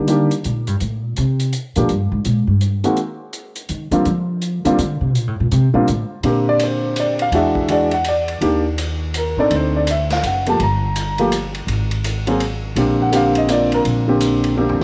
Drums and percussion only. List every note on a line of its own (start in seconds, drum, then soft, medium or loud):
0.07 closed hi-hat soft
0.31 closed hi-hat soft
0.44 closed hi-hat soft
0.67 closed hi-hat soft
0.80 closed hi-hat soft
1.16 closed hi-hat soft
1.40 closed hi-hat soft
1.53 closed hi-hat soft
1.76 closed hi-hat soft
1.89 closed hi-hat soft
2.25 closed hi-hat soft
2.61 closed hi-hat soft
2.84 closed hi-hat soft
2.96 closed hi-hat soft
3.33 closed hi-hat soft
3.55 closed hi-hat soft
3.69 closed hi-hat soft
3.91 closed hi-hat soft
4.05 closed hi-hat soft
4.41 closed hi-hat medium
4.65 closed hi-hat soft
4.78 closed hi-hat medium
5.15 closed hi-hat soft
5.51 closed hi-hat soft
5.88 closed hi-hat soft
6.23 ride medium
6.59 hi-hat pedal medium
6.59 ride medium
6.96 hi-hat pedal medium
6.96 ride medium
7.19 ride soft
7.32 ride soft
7.55 kick soft
7.68 ride medium
7.91 ride soft
8.04 hi-hat pedal soft
8.04 ride medium
8.28 ride soft
8.41 ride medium
8.78 hi-hat pedal soft
8.78 ride medium
9.14 hi-hat pedal medium
9.14 ride medium
9.51 ride medium
9.87 hi-hat pedal medium
9.87 ride medium
10.10 snare soft
10.10 ride soft
10.23 hi-hat pedal medium
10.23 ride medium
10.46 ride soft
10.60 ride soft
10.96 hi-hat pedal medium
10.96 ride medium
11.18 ride soft
11.32 hi-hat pedal medium
11.32 ride medium
11.55 ride soft
11.68 ride medium
11.91 ride soft
12.04 hi-hat pedal medium
12.04 ride medium
12.27 ride soft
12.40 ride medium
12.76 ride medium
13.13 hi-hat pedal medium
13.13 ride medium
13.35 ride soft
13.49 hi-hat pedal medium
13.49 ride medium
13.72 ride soft
13.85 ride medium
14.20 hi-hat pedal medium
14.20 ride medium
14.44 ride soft
14.57 floor tom soft
14.69 floor tom medium